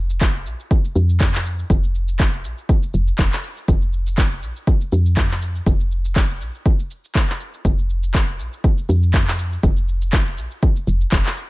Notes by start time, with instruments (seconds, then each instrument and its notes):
Already playing: fm bass F1
0.10 shaker
0.21 kick, clap, shaker
0.35 shaker
0.46 fm bass A#1, shaker
0.60 shaker
0.71 kick, shaker
0.85 shaker
0.95 fm bass F2, shaker
1.09 shaker
1.20 kick, clap, shaker
1.34 clap, shaker
1.45 shaker
1.59 shaker
1.70 fm bass F1, kick, shaker
1.84 shaker
1.95 shaker
2.08 shaker
2.20 kick, clap, shaker
2.33 shaker
2.44 fm bass A#1, shaker
2.58 shaker
2.69 kick, shaker
2.83 shaker
2.94 fm bass F1, shaker
3.08 shaker
3.19 fm bass F1, kick, clap, shaker
3.32 clap, shaker
3.44 shaker
3.57 shaker
3.68 fm bass F1, kick, shaker
3.82 shaker
3.93 shaker
4.07 shaker
4.18 kick, clap, shaker
4.32 shaker
4.43 fm bass A#1, shaker
4.56 shaker
4.67 kick, shaker
4.81 shaker
4.92 fm bass F2, shaker
5.06 shaker
5.17 kick, clap, shaker
5.31 clap, shaker
5.42 shaker
5.56 shaker
5.66 fm bass F1, kick, shaker
5.80 shaker
5.92 shaker
6.05 shaker
6.16 kick, clap, shaker
6.30 shaker
6.41 fm bass A#1, shaker
6.55 shaker
6.66 kick, shaker
6.79 shaker
6.91 shaker
7.04 shaker
7.15 kick, clap, shaker
7.29 clap, shaker
7.40 shaker
7.54 shaker
7.65 fm bass F1, kick, shaker
7.78 shaker
7.90 shaker
8.03 shaker
8.14 kick, clap, shaker
8.28 shaker
8.39 fm bass A#1, shaker
8.53 shaker
8.64 kick, shaker
8.78 shaker
8.89 fm bass F2, shaker
9.03 shaker
9.14 kick, clap, shaker
9.27 clap, shaker
9.39 shaker
9.52 shaker
9.63 fm bass F1, kick, shaker
9.77 shaker
9.88 shaker
10.02 shaker
10.13 kick, clap, shaker
10.26 shaker
10.38 fm bass A#1, shaker
10.51 shaker
10.62 kick, shaker
10.76 shaker
10.87 fm bass F1, shaker
11.01 shaker
11.12 fm bass F1, kick, clap, shaker
11.26 clap, shaker
11.37 shaker